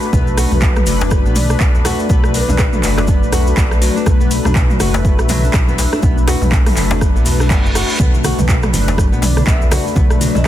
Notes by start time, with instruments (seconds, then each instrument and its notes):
Already playing: analog polysynth A3 D4 B4, analog synth pad A3 F#4 B4 F#5
0.02 cabasa
0.13 detuned saw bass B1, analog polysynth A3 D4 B4, nylon-string guitar B3, analog synth pad D5, kick, djembe tone, cabasa
0.27 cabasa
0.38 nylon-string guitar F#4, cross-stick, open hi-hat, cabasa
0.52 detuned saw bass B1, mid tom, djembe tone, cabasa
0.61 nylon-string guitar B3, kick, clap, cabasa
0.76 cross-stick, mid tom, cabasa
0.87 detuned saw bass F#1, nylon-string guitar F#3, analog polysynth A3 D4 B4, open hi-hat, cabasa
1.01 nylon-string guitar D4, djembe slap, cabasa
1.11 kick, cross-stick, cabasa
1.25 detuned saw bass B1, nylon-string guitar B3, cabasa
1.36 bansuri D5, mid tom, open hi-hat, djembe slap, cabasa
1.50 nylon-string guitar D4, cross-stick, cabasa
1.60 detuned saw bass B1, nylon-string guitar B3, kick, clap, cabasa
1.75 djembe tone, cabasa
1.85 nylon-string guitar F#4, cross-stick, open hi-hat, djembe slap, cabasa
1.99 cabasa
2.09 detuned saw bass B1, analog polysynth A3 D4 B4, nylon-string guitar B3, kick, djembe tone, cabasa
2.24 cross-stick, cabasa
2.34 nylon-string guitar F#3, bansuri B4, open hi-hat, cabasa
2.48 detuned saw bass B1, nylon-string guitar D4, mid tom, djembe tone, cabasa
2.58 kick, cross-stick, clap, cabasa
2.73 nylon-string guitar B3, mid tom, cabasa
2.83 detuned saw bass F#1, analog polysynth A3 D4 B4, clap, open hi-hat, cabasa
2.98 nylon-string guitar D4, cross-stick, djembe slap, cabasa
3.07 nylon-string guitar B3, kick, cabasa
3.22 detuned saw bass B1, cabasa
3.32 nylon-string guitar F#4, cross-stick, open hi-hat, djembe tone, cabasa
3.47 cabasa
3.57 detuned saw bass B1, nylon-string guitar B3, kick, clap, cabasa
3.71 cross-stick, cabasa
3.82 nylon-string guitar F#3, open hi-hat, cabasa
3.96 nylon-string guitar D4, cabasa
4.06 detuned saw bass B1, analog polysynth A3 B4, analog synth pad E5, kick, cross-stick, djembe tone, cabasa
4.21 nylon-string guitar B3, cabasa
4.31 open hi-hat, cabasa
4.45 detuned saw bass B1, nylon-string guitar D4, cross-stick, mid tom, djembe tone, cabasa
4.55 nylon-string guitar B3, kick, clap, cabasa
4.70 mid tom, cabasa
4.80 detuned saw bass F#1, analog polysynth A3 D4 B4, nylon-string guitar F#4, cross-stick, open hi-hat, cabasa
4.94 djembe slap, cabasa
5.05 nylon-string guitar B3, kick, cabasa
5.19 detuned saw bass B1, cross-stick, cabasa
5.29 nylon-string guitar F#3, mid tom, open hi-hat, djembe slap, cabasa
5.43 nylon-string guitar D4, cabasa
5.53 detuned saw bass B1, kick, cross-stick, clap, cabasa
5.68 nylon-string guitar B3, djembe tone, cabasa
5.78 open hi-hat, djembe slap, cabasa
5.92 nylon-string guitar D4, cross-stick, cabasa
6.02 detuned saw bass B1, analog polysynth A3 D4 B4, nylon-string guitar B3, kick, djembe tone, cabasa
6.18 cabasa
6.28 nylon-string guitar F#4, cross-stick, open hi-hat, djembe slap, cabasa
6.42 detuned saw bass B1, mid tom, djembe tone, cabasa
6.52 nylon-string guitar B3, kick, clap, cabasa
6.66 cross-stick, mid tom, open hi-hat, cabasa
6.77 detuned saw bass F#1, nylon-string guitar F#3, analog polysynth A3 D4 B4, clap, open hi-hat, cabasa
6.91 nylon-string guitar D4, djembe slap, cabasa
7.01 kick, cross-stick, reverse cymbal, djembe tone, cabasa
7.15 detuned saw bass B1, nylon-string guitar B3, cabasa
7.26 open hi-hat, djembe tone, cabasa
7.40 nylon-string guitar D4, cross-stick, cabasa
7.50 detuned saw bass F#1, nylon-string guitar B3, kick, clap, cabasa
7.65 djembe tone, cabasa
7.75 nylon-string guitar F#4, cross-stick, open hi-hat, cabasa
7.89 cabasa
7.99 detuned saw bass B1, analog polysynth A3 D4 B4, nylon-string guitar B3, analog synth pad D5, kick, high conga, djembe tone, cabasa
8.14 muted conga, cabasa
8.24 nylon-string guitar F#4, cross-stick, open hi-hat, high conga, cabasa
8.38 detuned saw bass B1, mid tom, muted conga, djembe tone, high conga, cabasa
8.49 nylon-string guitar B3, kick, clap, cabasa
8.63 cross-stick, mid tom, cabasa
8.73 detuned saw bass F#1, nylon-string guitar F#3, analog polysynth A3 D4 B4, open hi-hat, muted conga, low conga, cabasa
8.87 nylon-string guitar D4, djembe slap, cabasa
8.97 kick, cross-stick, muted conga, high conga, low conga, cabasa
9.12 detuned saw bass B1, nylon-string guitar B3, cabasa
9.22 bansuri D5, mid tom, open hi-hat, djembe slap, muted conga, cabasa
9.37 nylon-string guitar D4, cross-stick, high conga, cabasa
9.47 detuned saw bass B1, nylon-string guitar B3, bansuri E5, kick, clap, cabasa
9.61 muted conga, djembe tone, cabasa
9.71 nylon-string guitar F#4, cross-stick, open hi-hat, djembe slap, high conga, cabasa
9.86 muted conga, cabasa
9.96 detuned saw bass B1, analog polysynth A3 D4 B4, nylon-string guitar B3, kick, high conga, djembe tone, cabasa
10.11 cross-stick, muted conga, cabasa
10.21 nylon-string guitar F#3, open hi-hat, high conga, cabasa
10.35 detuned saw bass B1, nylon-string guitar D4, bansuri E5, mid tom, muted conga, high conga, djembe tone, cabasa